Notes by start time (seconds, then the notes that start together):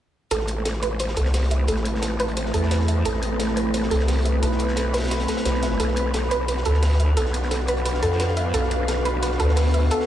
0.31 A1 A3 C4 E4 A4 B4, closed hi-hat
0.40 snare
0.45 B4, closed hi-hat
0.65 A4, snare, closed hi-hat
0.73 snare
0.83 B4, closed hi-hat
0.92 A5
0.99 C5, closed hi-hat
1.08 snare
1.16 C2 A4, closed hi-hat
1.25 snare
1.34 C5, snare, closed hi-hat, open hi-hat
1.43 snare
1.51 E5, closed hi-hat
1.68 A1 A4, closed hi-hat
1.76 snare
1.85 closed hi-hat
1.95 snare
2.02 A4, snare, closed hi-hat
2.20 B4, closed hi-hat
2.28 closed hi-hat
2.37 C5, closed hi-hat
2.46 snare
2.54 E2 A4, closed hi-hat
2.63 snare
2.71 C5, snare, closed hi-hat
2.80 snare
2.88 E5, closed hi-hat
3.05 A1 A4, closed hi-hat
3.14 snare
3.23 B5, closed hi-hat
3.40 A4, snare, closed hi-hat
3.48 snare
3.57 B4, closed hi-hat
3.74 C5, closed hi-hat
3.83 snare
3.91 C2 A4, closed hi-hat
4.00 snare
4.08 C5, snare, closed hi-hat, open hi-hat
4.17 snare
4.25 E5, closed hi-hat
4.43 B1 A4, closed hi-hat
4.52 snare
4.59 closed hi-hat
4.68 snare
4.76 A4, snare, closed hi-hat
4.94 B4, snare, closed hi-hat
4.98 snare, closed hi-hat
5.03 snare, closed hi-hat
5.07 snare, closed hi-hat
5.11 C5, snare, closed hi-hat
5.19 snare, closed hi-hat
5.28 A4, snare, closed hi-hat
5.37 snare, closed hi-hat
5.45 B1 C5, snare, closed hi-hat
5.54 snare
5.63 E5, snare, closed hi-hat
5.71 snare
5.80 B1 B3 D4 F#4 A4, closed hi-hat
5.88 snare
5.96 closed hi-hat
6.14 A4, snare, closed hi-hat
6.23 snare
6.31 B4, closed hi-hat
6.48 B4, closed hi-hat
6.57 F5, snare
6.65 D2 A4, closed hi-hat
6.74 snare
6.83 B4, snare, closed hi-hat, open hi-hat
6.92 snare
7.00 E5, closed hi-hat
7.17 B1 A4, closed hi-hat
7.26 snare
7.34 closed hi-hat
7.42 snare
7.51 A4, snare, closed hi-hat
7.67 B4, closed hi-hat
7.77 closed hi-hat
7.85 B4, closed hi-hat
7.94 snare
8.03 F2 A4, closed hi-hat
8.12 snare
8.20 B4, snare, closed hi-hat
8.28 snare
8.37 E5, closed hi-hat
8.54 B1 A4, closed hi-hat
8.63 snare
8.71 closed hi-hat
8.88 A4, snare, closed hi-hat
8.96 snare
9.05 B4, closed hi-hat
9.23 B4, closed hi-hat
9.32 snare
9.40 D2 A4, closed hi-hat
9.48 snare
9.56 B4, snare, closed hi-hat, open hi-hat
9.66 snare
9.74 E5, closed hi-hat
9.91 A4, closed hi-hat
10.00 snare